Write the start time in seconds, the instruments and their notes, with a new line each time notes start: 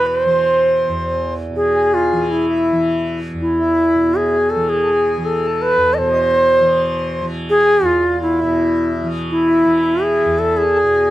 Already playing: tanpura E2 B2 E3, harmonium B4
0.06 bansuri B4
0.18 bansuri C5
0.25 tanpura E3, harmonium C5
0.88 tanpura E2
1.50 tanpura B2
1.56 bansuri G#4
1.76 harmonium G#4
1.94 bansuri F4
2.13 tanpura E3
2.31 bansuri E4
2.50 harmonium E4
2.72 tanpura E3
3.34 tanpura E2
3.41 bansuri E4
3.60 harmonium E4
3.95 tanpura B2
4.15 bansuri G#4
4.34 harmonium G#4
4.50 bansuri A4
4.55 tanpura E3
4.70 bansuri G#4, harmonium A4
4.82 harmonium A4
4.89 harmonium G#4
5.17 tanpura E3
5.25 bansuri A4
5.45 harmonium A4
5.62 bansuri B4
5.77 tanpura E2
5.94 bansuri D#5
5.99 tanpura B2, bansuri C5
6.12 harmonium D#5
6.19 harmonium C5
6.60 tanpura E3
7.21 tanpura E3
7.50 bansuri G#4
7.66 harmonium G#4
7.81 tanpura E2
7.86 bansuri F4
8.02 harmonium F4
8.22 bansuri E4
8.39 harmonium E4
8.43 tanpura B2
9.02 tanpura E3
9.31 bansuri E4
9.49 harmonium E4
9.64 tanpura E3
10.03 bansuri G#4
10.25 tanpura E2
10.39 bansuri A4
10.57 bansuri G#4, harmonium A4
10.76 harmonium G#4
10.84 tanpura B2